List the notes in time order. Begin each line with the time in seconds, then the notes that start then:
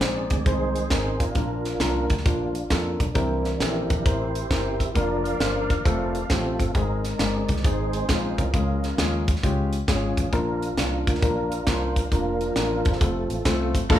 Already playing: G#2
0.01 A#1 C4 D#4 G#4 C5 D5, snare, closed hi-hat
0.30 D2 D#3 G#3 C4, kick, closed hi-hat
0.46 C2 C4 D#4 G#4 C5, kick, closed hi-hat
0.76 closed hi-hat
0.90 G#1 C4 D#4 G#4 A#4, kick, snare, closed hi-hat
1.19 D4 F4 A#4, kick, closed hi-hat
1.34 A#1 A#2 F3 A#3 D4 F4 A#4, kick, closed hi-hat
1.65 snare, closed hi-hat
1.80 C2 A#3 D4 F4 A#4, snare, closed hi-hat
2.10 D2 G4, kick, closed hi-hat
2.18 snare
2.24 A#1 F3 A#3 D4 F4 A#4, kick, closed hi-hat
2.55 closed hi-hat
2.70 F2 A#3 D4 F4 A4, kick, snare, closed hi-hat
3.00 B1, kick, closed hi-hat
3.14 C2 C3 E3 A#3 C4 D4 E4 G4 A#4, kick, closed hi-hat
3.45 snare, closed hi-hat
3.60 A#1 C4 E4 G4 A4 A#4, snare, closed hi-hat
3.90 A#1 E3 A#3 D4, kick, closed hi-hat
4.05 A1 C4 E4 G4 A#4 C5, kick, closed hi-hat
4.35 closed hi-hat
4.50 G1 C4 E4 G4 A#4, kick, snare, closed hi-hat
4.79 E5, kick, closed hi-hat
4.94 F1 F3 A#3 D4 F4 A#4 D5 F5, kick, closed hi-hat
5.24 A#4 D5 F5, closed hi-hat
5.39 G1 A#3 D4 F4 C5, snare, closed hi-hat
5.70 kick, closed hi-hat
5.84 F1 F3 A3 C4 F4 A4, kick, closed hi-hat
6.15 closed hi-hat
6.30 A1 A3 C4 F4 G4 A4, kick, snare, closed hi-hat
6.60 G1, kick, closed hi-hat
6.74 G#1 G#2 G#3 C4 D#4 G#4 A#4, kick, closed hi-hat
7.04 snare, closed hi-hat
7.18 G1 G#3 C4 D#4 G#4 A#4 D5, snare, closed hi-hat
7.48 C2 D#3 G#3 C4, kick, closed hi-hat
7.57 snare
7.64 G#1 G#3 C4 D#4 G#4 C5, kick, closed hi-hat
7.93 closed hi-hat
8.08 A#1 G#3 C4 D#4 F4, kick, snare, closed hi-hat
8.38 C2 C#4 F4 A#4, kick, closed hi-hat
8.52 C#2 C#3 F3 G#3 C#4 F4 G#4, kick, closed hi-hat
8.83 snare, closed hi-hat
8.98 D#2 G#3 C#4 F4 G#4, snare, closed hi-hat
9.28 kick, closed hi-hat
9.36 snare
9.43 C#2 G#3 C#4 F4 G4, kick, closed hi-hat
9.73 closed hi-hat
9.87 G#1 G#3 C#4 F4 G#4, kick, snare, closed hi-hat
10.17 A1, kick, closed hi-hat
10.32 A#1 A#2 A#3 D4 F4 A#4, kick, closed hi-hat
10.63 closed hi-hat
10.77 C2 A#3 D4 F4 A#4, snare, closed hi-hat
11.07 D2 F3 A#3 D4, kick, closed hi-hat
11.15 snare
11.22 A#1 A#3 D4 F4 A#4, kick, closed hi-hat
11.52 closed hi-hat
11.67 C2 A#3 D4 F4 A#4 C5, kick, snare, closed hi-hat
11.96 A#4, kick, closed hi-hat
12.11 F1 F3 A#3 D4 F4 A#4, kick, closed hi-hat
12.41 closed hi-hat
12.56 A1 A#3 D4 F4 A#4, snare, closed hi-hat
12.85 G1 C4 F4 A4, kick, closed hi-hat
12.93 snare
13.00 F1 F3 A3 C4 F4 A4, kick, closed hi-hat
13.30 A1, closed hi-hat
13.45 C2 A3 C4 F4 A4, kick, snare, closed hi-hat
13.75 A1, kick, closed hi-hat
13.89 A#1 A#2 A3 A#3 D4 F4 A4 D5 F5 A#5, kick, crash